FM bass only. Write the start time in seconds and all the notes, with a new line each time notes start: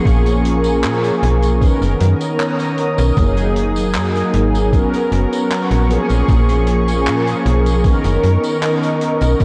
0.06 A#1
0.84 A#2
1.23 B1
1.81 F#1
2.01 F#2
2.98 B1
3.17 F#1
3.95 F#2
4.34 G#1
5.12 F#1
5.71 A#1
6.10 A#1
6.28 A#1
7.07 A#2
7.46 B1
8.05 F#1
8.24 F#2
9.21 B1
9.40 F#1